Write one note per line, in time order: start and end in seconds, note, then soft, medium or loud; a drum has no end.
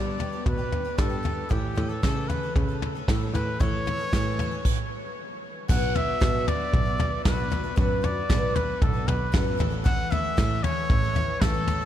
0.00 0.19 G2 medium
0.00 0.19 D3 medium
0.00 0.17 G3 medium
0.00 0.39 G3 medium
0.00 0.19 B3 medium
0.00 0.19 D4 medium
0.00 0.20 G4 medium
0.00 0.45 D5 medium
0.19 0.32 G3 medium
0.19 0.33 B3 medium
0.19 0.32 D4 medium
0.19 0.31 G4 medium
0.19 floor tom medium
0.33 0.60 G3 soft
0.33 0.59 B3 soft
0.33 0.58 D4 soft
0.33 0.56 G4 soft
0.46 0.73 B2 medium
0.46 0.95 B4 medium
0.46 kick loud
0.46 floor tom loud
0.58 0.86 G3 soft
0.58 0.85 B3 soft
0.58 0.84 D4 soft
0.58 0.83 G4 soft
0.72 0.84 G2 medium
0.72 floor tom medium
0.85 0.97 G3 soft
0.85 0.98 B3 soft
0.85 0.98 D4 soft
0.85 0.98 G4 medium
0.98 1.11 G2 medium
0.98 1.44 G2 medium
0.98 1.11 D3 medium
0.98 1.11 G3 medium
0.98 1.10 B3 medium
0.98 1.10 D4 medium
0.98 1.08 G4 medium
0.98 1.52 A4 medium
0.98 kick loud
0.98 snare medium
1.10 1.21 G3 soft
1.10 1.23 B3 soft
1.10 1.24 D4 soft
1.10 1.24 G4 medium
1.23 1.49 G3 medium
1.23 1.50 B3 medium
1.23 1.51 D4 medium
1.23 1.51 G4 medium
1.23 floor tom medium
1.49 1.76 A2 medium
1.49 1.74 A2 medium
1.49 1.74 E3 medium
1.49 1.75 A3 medium
1.49 1.76 C#4 medium
1.49 1.91 G4 medium
1.49 1.77 A4 medium
1.49 kick loud
1.49 floor tom medium
1.75 2.00 A2 medium
1.75 1.89 E3 medium
1.75 1.90 A3 medium
1.75 1.90 C#4 medium
1.75 1.88 A4 medium
1.75 floor tom medium
1.89 2.03 A3 soft
1.89 2.03 C#4 soft
1.89 2.03 A4 soft
1.89 2.30 A4 medium
2.03 2.29 A2 medium
2.03 2.49 C#3 medium
2.03 2.28 E3 medium
2.03 2.30 A3 medium
2.03 2.30 C#4 medium
2.03 2.30 A4 medium
2.03 kick medium
2.03 snare medium
2.28 2.42 E3 medium
2.28 2.43 A3 medium
2.28 2.44 C#4 medium
2.28 2.55 B4 medium
2.28 floor tom medium
2.32 2.42 A4 medium
2.43 2.70 A3 soft
2.43 2.69 C#4 soft
2.43 2.67 A4 soft
2.56 3.01 C#3 medium
2.56 2.80 B4 medium
2.56 kick loud
2.56 floor tom medium
2.69 2.96 A3 soft
2.69 2.95 C#4 soft
2.69 2.94 A4 soft
2.82 floor tom medium
2.95 3.08 A3 soft
2.95 3.09 C#4 medium
2.95 3.08 A4 medium
3.08 3.31 A2 medium
3.08 3.21 A2 medium
3.08 3.21 E3 medium
3.08 3.22 A3 medium
3.08 3.22 C#4 medium
3.08 3.20 A4 medium
3.08 kick loud
3.08 snare loud
3.21 3.34 A3 soft
3.21 3.35 C#4 soft
3.21 3.34 A4 soft
3.34 3.57 A2 medium
3.34 3.59 E3 medium
3.34 3.60 A3 medium
3.34 3.61 C#4 medium
3.34 3.61 A4 medium
3.34 3.62 B4 medium
3.34 floor tom medium
3.60 3.86 A2 medium
3.60 4.06 A2 medium
3.60 3.85 E3 medium
3.60 3.85 A3 medium
3.60 3.87 C#4 medium
3.60 3.87 A4 medium
3.60 5.17 C#5 loud
3.60 kick loud
3.60 floor tom loud
3.86 3.99 E3 medium
3.86 4.00 A3 medium
3.86 4.00 C#4 medium
3.86 3.98 A4 medium
3.86 floor tom medium
3.99 4.13 A3 soft
3.99 4.13 C#4 soft
3.99 4.12 A4 medium
4.13 4.58 A2 loud
4.13 4.39 A2 medium
4.13 4.38 E3 medium
4.13 4.39 A3 medium
4.13 4.40 C#4 medium
4.13 4.40 A4 medium
4.13 kick medium
4.13 snare medium
4.39 4.52 E3 medium
4.39 4.53 A3 medium
4.39 4.52 C#4 medium
4.39 4.50 A4 medium
4.39 floor tom medium
4.51 4.66 A3 soft
4.51 4.66 C#4 soft
4.51 4.65 A4 medium
4.65 kick loud
4.65 crash medium
5.68 6.15 B1 medium
5.68 5.95 B2 medium
5.68 5.93 F#3 medium
5.68 5.94 B3 medium
5.68 5.95 D4 medium
5.68 5.96 F#4 medium
5.68 5.97 F#5 medium
5.68 kick loud
5.68 floor tom medium
5.68 crash medium
5.94 6.20 F#3 medium
5.94 6.20 B3 medium
5.94 6.21 D4 medium
5.94 6.21 F#4 medium
5.94 6.50 E5 loud
5.94 floor tom medium
6.20 6.47 B2 medium
6.20 6.44 B2 medium
6.20 6.46 F#3 medium
6.20 6.47 B3 medium
6.20 6.48 D4 medium
6.20 6.48 F#4 medium
6.20 kick loud
6.20 snare loud
6.20 floor tom medium
6.47 6.86 F#3 medium
6.47 6.87 B3 medium
6.47 6.86 D4 medium
6.47 6.84 F#4 medium
6.47 7.24 D5 loud
6.47 floor tom medium
6.74 7.19 B1 medium
6.74 kick loud
6.74 floor tom medium
6.85 6.98 B3 soft
6.85 6.99 D4 soft
6.85 6.99 F#4 medium
6.98 7.24 F#3 medium
6.98 7.25 B3 medium
6.98 7.25 D4 medium
6.98 7.26 F#4 medium
6.98 floor tom medium
7.25 7.71 B1 medium
7.25 7.38 B2 medium
7.25 7.39 F#3 medium
7.25 7.39 B3 medium
7.25 7.38 D4 medium
7.25 7.36 F#4 medium
7.25 7.74 B4 loud
7.25 kick loud
7.25 snare loud
7.25 floor tom medium
7.37 7.50 B3 soft
7.37 7.51 D4 medium
7.37 7.51 F#4 medium
7.50 7.64 F#3 medium
7.50 7.65 B3 medium
7.50 7.64 D4 medium
7.50 7.62 F#4 medium
7.50 floor tom medium
7.63 7.76 B3 soft
7.63 7.76 D4 soft
7.63 7.77 F#4 soft
7.76 8.23 F#2 medium
7.76 8.03 B2 medium
7.76 8.01 F#3 medium
7.76 8.02 B3 medium
7.76 8.03 D4 medium
7.76 8.04 F#4 medium
7.76 8.06 B4 medium
7.76 kick loud
7.76 floor tom medium
8.02 8.29 F#3 medium
8.02 8.29 B3 medium
8.02 8.30 D4 medium
8.02 8.30 F#4 medium
8.02 8.57 D5 medium
8.02 floor tom medium
8.29 8.75 B1 medium
8.29 8.56 B2 medium
8.29 8.53 F#3 medium
8.29 8.55 B3 medium
8.29 8.56 D4 medium
8.29 8.57 F#4 medium
8.29 kick medium
8.29 snare loud
8.29 floor tom medium
8.55 8.94 F#3 medium
8.55 8.95 B3 medium
8.55 8.94 D4 medium
8.55 8.92 F#4 medium
8.55 8.84 B4 medium
8.55 floor tom medium
8.82 9.04 B1 medium
8.82 9.09 A4 medium
8.82 kick loud
8.82 floor tom medium
8.93 9.07 B3 soft
8.93 9.07 D4 soft
8.93 9.07 F#4 medium
9.07 9.30 B1 medium
9.07 9.31 F#3 soft
9.07 9.32 B3 medium
9.07 9.32 D4 medium
9.07 9.33 F#4 medium
9.07 9.60 B4 medium
9.07 floor tom medium
9.32 9.56 F#2 medium
9.32 9.46 B2 medium
9.32 9.46 F#3 medium
9.32 9.46 B3 medium
9.32 9.46 D4 medium
9.32 9.44 F#4 medium
9.32 kick loud
9.32 snare loud
9.32 floor tom medium
9.45 9.58 B3 soft
9.45 9.59 D4 soft
9.45 9.59 F#4 medium
9.57 10.28 A1 loud
9.57 9.72 E3 medium
9.57 9.72 A3 medium
9.57 9.71 C#4 medium
9.57 9.69 A4 medium
9.57 floor tom medium
9.70 9.84 A3 soft
9.70 9.85 C#4 soft
9.70 9.85 A4 medium
9.84 10.11 A2 medium
9.84 10.09 E3 medium
9.84 10.10 A3 medium
9.84 10.11 C#4 medium
9.84 10.12 A4 medium
9.84 10.13 F#5 loud
9.84 kick loud
9.84 floor tom medium
10.10 10.37 E3 medium
10.10 10.37 A3 medium
10.10 10.37 C#4 medium
10.10 10.38 A4 medium
10.10 10.65 E5 loud
10.10 floor tom medium
10.37 10.63 A2 loud
10.37 10.60 A2 medium
10.37 10.62 E3 medium
10.37 10.64 A3 loud
10.37 10.64 C#4 medium
10.37 10.64 A4 loud
10.37 kick medium
10.37 snare medium
10.37 floor tom medium
10.63 11.03 E3 medium
10.63 11.03 A3 medium
10.63 11.03 C#4 medium
10.63 11.01 A4 medium
10.63 11.43 C#5 loud
10.63 floor tom medium
10.90 11.35 A1 medium
10.90 kick loud
10.90 floor tom medium
11.02 11.15 A3 soft
11.02 11.16 C#4 medium
11.02 11.15 A4 medium
11.15 11.41 E3 medium
11.15 11.41 A3 medium
11.15 11.42 C#4 medium
11.15 11.43 A4 medium
11.15 floor tom medium
11.41 11.85 A1 medium
11.41 11.55 A2 medium
11.41 11.55 E3 medium
11.41 11.55 A3 medium
11.41 11.55 C#4 medium
11.41 11.85 A4 loud
11.41 11.53 A4 medium
11.41 kick loud
11.41 snare loud
11.41 floor tom medium
11.54 11.68 A3 soft
11.54 11.68 C#4 soft
11.54 11.67 A4 medium
11.68 11.81 E3 medium
11.68 11.82 A3 medium
11.68 11.81 C#4 medium
11.68 11.80 A4 medium
11.68 floor tom medium
11.81 11.85 A4 medium